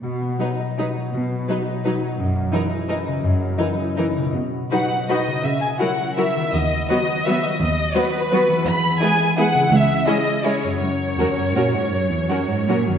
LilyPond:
<<
  \new Staff \with { instrumentName = "Violin section" } { \time 3/4 \key b \major \tempo 4 = 166 r4 b'4 b'4 | r4 b'4 b'4 | r4 ais'4 ais'4 | r4 ais'4 ais'4 |
r4 fis''4 dis''4 | e''8 gis''8 fis''4 e''4 | dis''4 dis''4 e''8 dis''8 | dis''4 b'2 |
b''4 gis''4 fis''4 | e''4 dis''4 cis''4 | cis''2.~ | cis''2~ cis''8 r8 | }
  \new Staff \with { instrumentName = "Violin section" } { \time 3/4 \key b \major r4 dis'4 dis'4 | r4 dis'4 dis'4 | r4 dis'4 dis'4 | r4 dis'4 dis'4 |
r4 <fis' b'>4 <fis' b'>4 | r4 <fis' ais'>4 <fis' ais'>4 | r4 <fis' b'>4 <fis' b'>4 | r4 <fis' b'>4 <fis' b'>4 |
r4 <e' gis'>4 <e' gis'>4 | r4 <e' gis'>4 <e' gis'>4 | r4 <fis' ais'>4 <fis' ais'>4 | r4 <fis' ais'>4 <fis' ais'>4 | }
  \new Staff \with { instrumentName = "Harp" } { \time 3/4 \key b \major b,8 b8 fis'8 dis''8 fis'8 fis8 | b,8 b8 fis'8 dis''8 fis'8 fis8 | fis,8 ais8 e'8 dis''8 e'8 cis8 | fis,8 ais8 e'8 dis''8 e'8 cis8 |
<b, b fis' dis''>2. | <cis ais fis' e''>2. | <dis b fis' dis''>2.~ | <dis b fis' dis''>2. |
<e b e' gis'>2. | <cis cis' e' gis'>2. | <fis, cis' fis' ais'>2.~ | <fis, cis' fis' ais'>2. | }
  \new Staff \with { instrumentName = "Viola section" } { \clef bass \time 3/4 \key b \major r4 fis4 fis4 | r4 fis4 fis4 | r4 e4 e4 | r4 e4 e4 |
r4 <fis dis'>4 <fis dis'>4 | r4 <fis e'>4 <fis e'>4 | r4 <fis b>4 <fis b>4 | r4 <fis b>4 <fis b>4 |
r4 <gis b>4 <gis b>4 | r4 <gis cis'>4 <gis cis'>4 | r4 <fis cis'>4 <fis cis'>4 | r4 <fis cis'>4 <fis cis'>4 | }
  \new Staff \with { instrumentName = "Cello section" } { \clef bass \time 3/4 \key b \major b,4 r2 | b,4 r2 | fis,4 r2 | fis,4 r2 |
b,4 r2 | cis4 r2 | dis,4 r2 | dis,4 r2 |
e,4 r2 | cis,4 r2 | fis,4 e,8 fis,8 ais,8 gis,8 | fis,8 e,8 fis,8 gis,8 ais,8 fis,8 | }
>>